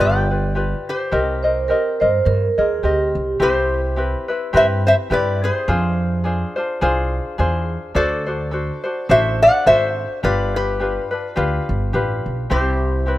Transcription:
Already playing: G4
0.00 G1 F4 B4 D5 G5
0.30 F4 B4 D5
0.55 F4 G4 B4 D5
0.89 G4 C5
1.11 C2 C4 G4 A#4 D#5
1.43 C4 A#4 C5 D#5
1.68 C4 G4 A#4 D#5
2.00 G2 C4 A#4 C5 D#5
2.25 G2 A#4
2.58 D#2 C4 G#4 A#4 D#5
2.83 D2 C4 G4 A#4 D#5
3.15 C2
3.40 C2 C4 E4 G4 C5
3.96 C4 E4 G4 B4
4.28 C4 E4 B4
4.53 G2 C4 E4 G4 B4 C5
4.57 E5
4.87 C5 E5
5.10 G2 C4 E4 G4 B4 D5
5.44 G#4 C5
5.68 F2 D4 F4 G#4 C5
6.24 D4 F4 G#4 C5
6.56 D4 F4 C5
6.81 C2 D4 F4 G#4 C5
7.38 E2 D4 F4 G#4 C5
7.95 D2 D4 F#4 A4 C5 D5
8.27 D4 F#4 C5
8.51 D4 F#4 A4 C5
8.84 D4 F#4 C5
9.09 A1 D4 F#4 A4 C5 E5
9.42 D5 F#5
9.66 G#1 D4 F#4 A4 C5 E5
10.23 G1 D4 F4 G4 B4 D5
10.56 G4 B4
10.80 D4 F4 G4 B4
11.11 D4 F4 B4
11.36 D2 D4 F4 G4 B4
11.69 G1
11.93 A1 D4 F4 G4 B4
12.26 B1
12.50 C2 C4 E4 G4 C5
13.06 C4 E4 G4 B4

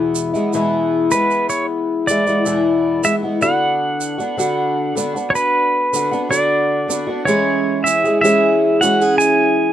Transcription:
Already playing: E2 B2 E3 G#3 B3 E4
0.15 shaker
0.34 E3 G#3 B3 E4, shaker
0.53 E2 B2 E3 G#3 B3 E4, shaker
1.11 E3 G#3 B3 E4 B4, shaker
1.31 shaker
1.50 C#5, shaker
2.07 E3 G#3 B3 E4 D5, shaker
2.26 E3 G#3 B3 E4, shaker
2.45 E2 B2 E3 G#3 B3 E4, shaker
3.03 E3 G#3 B3 E4 E5, shaker
3.23 E3 G#3 B3 E4
3.41 D3 B3 D4 F#4 F#5, shaker
4.01 shaker
4.18 B3 D4 F#4, shaker
4.37 D3 B3 D4 F#4, shaker
4.95 D3 B3 D4 F#4, shaker
5.15 B3 D4 F#4, shaker
5.30 C#5
5.35 B4, shaker
5.93 D3 B3 D4 F#4, shaker
6.11 B3 D4 F#4, shaker
6.29 D3 B3 D4 F#4 D5, shaker
6.88 D3 B3 D4 F#4, shaker
7.07 B3 D4 F#4
7.25 E3 G#3 C#4 G#4 C#5, shaker
7.84 E4 E5, shaker
8.04 G#3 C#4 G#4, shaker
8.21 E3 G#3 C#4 E4 G#4 E5, shaker
8.81 E3 G#3 C#4 F#4 G#4 F#5, shaker
9.01 G#4, shaker
9.18 E4 G#5, shaker

